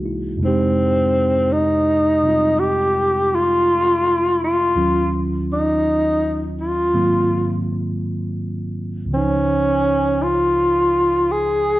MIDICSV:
0, 0, Header, 1, 3, 480
1, 0, Start_track
1, 0, Tempo, 1088929
1, 176, Time_signature, 4, 2, 24, 8
1, 5200, End_track
2, 0, Start_track
2, 0, Title_t, "Tenor saxophone"
2, 0, Program_c, 0, 66
2, 198, Note_on_c, 0, 60, 61
2, 672, Note_on_c, 0, 63, 73
2, 679, Note_off_c, 0, 60, 0
2, 1143, Note_on_c, 0, 67, 81
2, 1150, Note_off_c, 0, 63, 0
2, 1474, Note_on_c, 0, 65, 84
2, 1481, Note_off_c, 0, 67, 0
2, 1947, Note_off_c, 0, 65, 0
2, 1957, Note_on_c, 0, 65, 82
2, 2248, Note_off_c, 0, 65, 0
2, 2436, Note_on_c, 0, 63, 67
2, 2889, Note_off_c, 0, 63, 0
2, 2911, Note_on_c, 0, 65, 61
2, 3367, Note_off_c, 0, 65, 0
2, 4028, Note_on_c, 0, 61, 68
2, 4508, Note_on_c, 0, 65, 67
2, 4514, Note_off_c, 0, 61, 0
2, 4987, Note_on_c, 0, 68, 67
2, 4994, Note_off_c, 0, 65, 0
2, 5200, Note_off_c, 0, 68, 0
2, 5200, End_track
3, 0, Start_track
3, 0, Title_t, "Tine electric piano"
3, 0, Program_c, 1, 4
3, 0, Control_c, 1, 64, 127
3, 0, Note_on_c, 1, 36, 42
3, 0, Note_on_c, 1, 48, 41
3, 0, Note_on_c, 1, 52, 40
3, 0, Note_on_c, 1, 56, 40
3, 0, Note_on_c, 1, 58, 37
3, 0, Note_on_c, 1, 63, 44
3, 0, Note_on_c, 1, 66, 38
3, 0, Note_on_c, 1, 68, 33
3, 24, Note_on_c, 1, 64, 37
3, 114, Note_off_c, 1, 66, 0
3, 164, Note_on_c, 1, 41, 49
3, 167, Note_off_c, 1, 48, 0
3, 173, Note_on_c, 1, 48, 45
3, 176, Note_off_c, 1, 36, 0
3, 180, Note_off_c, 1, 52, 0
3, 181, Note_off_c, 1, 56, 0
3, 182, Control_c, 1, 64, 0
3, 184, Note_off_c, 1, 58, 0
3, 185, Note_off_c, 1, 68, 0
3, 187, Note_off_c, 1, 63, 0
3, 187, Note_on_c, 1, 56, 42
3, 196, Note_on_c, 1, 63, 41
3, 209, Note_on_c, 1, 67, 55
3, 265, Control_c, 1, 64, 127
3, 272, Note_off_c, 1, 64, 0
3, 979, Note_off_c, 1, 48, 0
3, 984, Note_on_c, 1, 48, 30
3, 989, Note_on_c, 1, 55, 27
3, 992, Note_on_c, 1, 60, 29
3, 1001, Note_on_c, 1, 65, 34
3, 2086, Note_off_c, 1, 41, 0
3, 2092, Note_off_c, 1, 48, 0
3, 2095, Note_off_c, 1, 55, 0
3, 2096, Note_off_c, 1, 60, 0
3, 2096, Note_on_c, 1, 39, 40
3, 2097, Note_off_c, 1, 56, 0
3, 2097, Note_off_c, 1, 65, 0
3, 2097, Control_c, 1, 64, 0
3, 2098, Note_on_c, 1, 51, 36
3, 2100, Note_on_c, 1, 54, 42
3, 2101, Note_off_c, 1, 63, 0
3, 2102, Note_on_c, 1, 65, 47
3, 2104, Note_on_c, 1, 61, 42
3, 2108, Note_off_c, 1, 67, 0
3, 2168, Control_c, 1, 64, 127
3, 3052, Note_off_c, 1, 39, 0
3, 3052, Note_off_c, 1, 51, 0
3, 3054, Note_off_c, 1, 54, 0
3, 3055, Note_off_c, 1, 65, 0
3, 3055, Control_c, 1, 64, 0
3, 3056, Note_off_c, 1, 61, 0
3, 3057, Note_on_c, 1, 51, 41
3, 3059, Note_on_c, 1, 44, 41
3, 3059, Note_on_c, 1, 58, 37
3, 3059, Note_on_c, 1, 60, 43
3, 3060, Note_on_c, 1, 54, 37
3, 3063, Note_on_c, 1, 65, 43
3, 3126, Control_c, 1, 64, 127
3, 3992, Note_on_c, 1, 37, 35
3, 4003, Note_on_c, 1, 49, 38
3, 4016, Note_off_c, 1, 44, 0
3, 4016, Note_off_c, 1, 51, 0
3, 4016, Note_off_c, 1, 58, 0
3, 4016, Note_off_c, 1, 60, 0
3, 4016, Control_c, 1, 64, 0
3, 4016, Note_on_c, 1, 53, 35
3, 4017, Note_off_c, 1, 54, 0
3, 4018, Note_off_c, 1, 65, 0
3, 4029, Note_on_c, 1, 72, 32
3, 4040, Note_on_c, 1, 63, 40
3, 4099, Control_c, 1, 64, 127
3, 5200, Note_off_c, 1, 37, 0
3, 5200, Note_off_c, 1, 49, 0
3, 5200, Note_off_c, 1, 53, 0
3, 5200, Note_off_c, 1, 63, 0
3, 5200, Note_off_c, 1, 72, 0
3, 5200, End_track
0, 0, End_of_file